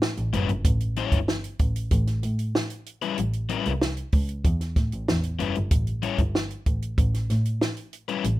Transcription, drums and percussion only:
0.02 snare
0.17 closed hi-hat
0.33 closed hi-hat
0.49 closed hi-hat
0.65 kick, closed hi-hat
0.80 closed hi-hat
0.96 closed hi-hat
1.12 kick, closed hi-hat
1.28 snare
1.44 closed hi-hat
1.59 kick, closed hi-hat
1.76 closed hi-hat
1.91 kick, closed hi-hat
2.07 snare, closed hi-hat
2.23 closed hi-hat
2.39 closed hi-hat
2.55 snare
2.70 closed hi-hat
2.86 closed hi-hat
3.02 closed hi-hat
3.18 closed hi-hat
3.33 closed hi-hat
3.49 closed hi-hat
3.65 closed hi-hat
3.81 snare
3.97 closed hi-hat
4.12 kick, open hi-hat
4.29 closed hi-hat
4.44 kick, closed hi-hat
4.61 snare, closed hi-hat
4.76 kick, snare, closed hi-hat
4.92 closed hi-hat
5.08 snare
5.23 closed hi-hat
5.40 closed hi-hat
5.55 closed hi-hat
5.71 kick, closed hi-hat
5.87 closed hi-hat
6.03 closed hi-hat
6.18 kick, closed hi-hat
6.35 snare
6.50 closed hi-hat
6.66 kick, closed hi-hat
6.82 closed hi-hat
6.98 kick, closed hi-hat
7.14 snare, closed hi-hat
7.30 snare, closed hi-hat
7.45 closed hi-hat
7.61 snare
7.77 closed hi-hat
7.93 closed hi-hat
8.09 closed hi-hat
8.24 closed hi-hat

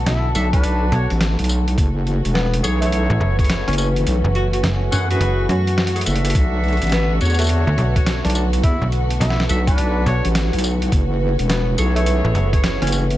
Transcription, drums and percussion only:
0.06 snare, closed hi-hat
0.35 closed hi-hat, tambourine
0.53 kick, closed hi-hat
0.64 closed hi-hat
0.92 closed hi-hat
1.10 closed hi-hat
1.21 snare, closed hi-hat
1.39 closed hi-hat
1.44 closed hi-hat
1.49 tambourine
1.68 closed hi-hat
1.78 kick, closed hi-hat
2.07 closed hi-hat
2.25 closed hi-hat
2.35 snare
2.54 closed hi-hat
2.64 closed hi-hat, tambourine
2.82 closed hi-hat
2.92 closed hi-hat
3.39 kick, closed hi-hat
3.44 closed hi-hat
3.50 snare, closed hi-hat
3.68 snare, closed hi-hat
3.73 closed hi-hat
3.75 closed hi-hat, tambourine
3.96 closed hi-hat
4.07 closed hi-hat
4.35 closed hi-hat
4.53 closed hi-hat
4.64 snare, closed hi-hat
4.92 closed hi-hat, tambourine
5.11 closed hi-hat
5.21 closed hi-hat
5.49 closed hi-hat
5.67 closed hi-hat
5.78 snare
5.87 closed hi-hat
5.96 closed hi-hat
6.01 closed hi-hat
6.06 closed hi-hat, tambourine
6.16 closed hi-hat
6.25 closed hi-hat
6.30 closed hi-hat
6.35 kick, closed hi-hat
6.64 closed hi-hat
6.68 closed hi-hat
6.73 closed hi-hat
6.77 closed hi-hat
6.82 closed hi-hat
6.84 closed hi-hat
6.87 closed hi-hat
6.89 snare, closed hi-hat
6.92 closed hi-hat
7.21 closed hi-hat, tambourine
7.25 tambourine
7.30 tambourine
7.34 tambourine
7.39 closed hi-hat, tambourine
7.41 tambourine
7.44 tambourine
7.47 closed hi-hat, tambourine
7.78 closed hi-hat
7.96 kick, closed hi-hat
8.06 snare, closed hi-hat
8.25 snare, closed hi-hat
8.30 closed hi-hat
8.35 tambourine
8.53 closed hi-hat
8.63 kick, closed hi-hat
8.92 closed hi-hat
9.10 closed hi-hat
9.21 snare, closed hi-hat
9.30 snare
9.40 snare
9.49 closed hi-hat, tambourine
9.67 kick, closed hi-hat
9.78 closed hi-hat
10.07 closed hi-hat
10.25 closed hi-hat
10.35 snare, closed hi-hat
10.53 closed hi-hat
10.59 closed hi-hat
10.64 tambourine
10.82 closed hi-hat
10.92 kick, closed hi-hat
11.39 closed hi-hat
11.50 snare, closed hi-hat
11.78 closed hi-hat, tambourine
11.96 closed hi-hat
12.06 closed hi-hat
12.35 closed hi-hat
12.53 kick, closed hi-hat
12.64 snare, closed hi-hat
12.82 snare, closed hi-hat
12.87 snare, closed hi-hat
12.92 snare, tambourine
12.98 snare
13.02 snare
13.10 closed hi-hat

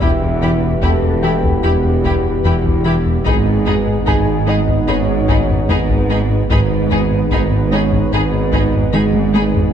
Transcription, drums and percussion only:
0.01 taiko
0.42 taiko low
0.82 taiko
1.43 taiko
2.04 taiko
2.25 taiko low
2.45 taiko low
2.65 taiko
3.26 taiko
3.67 taiko low
4.08 taiko
4.68 taiko
5.29 taiko
5.49 taiko low
5.69 taiko low
5.89 taiko
6.50 taiko
6.91 taiko low
7.31 taiko
7.92 taiko
8.53 taiko
8.73 taiko low
8.93 taiko mid
9.14 taiko high
9.34 taiko high
9.54 taiko low

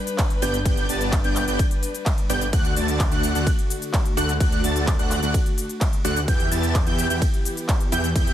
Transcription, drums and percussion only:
0.07 closed hi-hat, shaker
0.18 kick, clap, closed hi-hat, ride, shaker
0.30 closed hi-hat
0.42 open hi-hat, shaker
0.54 closed hi-hat, shaker
0.66 kick, closed hi-hat, ride, shaker
0.77 closed hi-hat
0.89 open hi-hat, shaker
1.01 closed hi-hat, shaker
1.12 kick, clap, closed hi-hat, ride, shaker
1.24 closed hi-hat
1.36 clap, open hi-hat, shaker
1.48 closed hi-hat, shaker
1.59 kick, closed hi-hat, ride, shaker
1.71 closed hi-hat
1.83 open hi-hat, shaker
1.95 closed hi-hat, shaker
2.06 kick, clap, closed hi-hat, ride, shaker
2.18 closed hi-hat
2.30 open hi-hat, shaker
2.41 closed hi-hat, shaker
2.53 kick, closed hi-hat, ride, shaker
2.65 closed hi-hat
2.76 open hi-hat, shaker
2.88 closed hi-hat, shaker
3.00 kick, clap, closed hi-hat, ride, shaker
3.12 closed hi-hat
3.23 open hi-hat, shaker
3.35 closed hi-hat, shaker
3.47 kick, closed hi-hat, ride, shaker
3.59 closed hi-hat
3.70 open hi-hat, shaker
3.82 closed hi-hat, shaker
3.94 kick, clap, closed hi-hat, ride, shaker
4.06 closed hi-hat
4.17 open hi-hat, shaker
4.29 closed hi-hat, shaker
4.40 kick, closed hi-hat, ride, shaker
4.52 closed hi-hat
4.64 open hi-hat, shaker
4.76 closed hi-hat, shaker
4.87 kick, clap, closed hi-hat, ride, shaker
4.99 closed hi-hat
5.11 clap, open hi-hat, shaker
5.23 closed hi-hat, shaker
5.34 kick, closed hi-hat, ride, shaker
5.46 closed hi-hat
5.58 open hi-hat, shaker
5.69 closed hi-hat, shaker
5.81 kick, clap, closed hi-hat, ride, shaker
5.93 closed hi-hat
6.05 open hi-hat, shaker
6.16 closed hi-hat, shaker
6.28 kick, closed hi-hat, ride, shaker
6.40 closed hi-hat
6.52 open hi-hat, shaker
6.63 closed hi-hat, shaker
6.75 kick, clap, closed hi-hat, ride, shaker
6.87 closed hi-hat
6.99 open hi-hat, shaker
7.10 closed hi-hat, shaker
7.22 kick, closed hi-hat, ride, shaker
7.34 closed hi-hat
7.45 open hi-hat, shaker
7.57 closed hi-hat, shaker
7.69 kick, clap, closed hi-hat, ride, shaker
7.80 closed hi-hat
7.92 open hi-hat, shaker
8.04 closed hi-hat, shaker
8.16 kick, closed hi-hat, ride, shaker
8.27 closed hi-hat

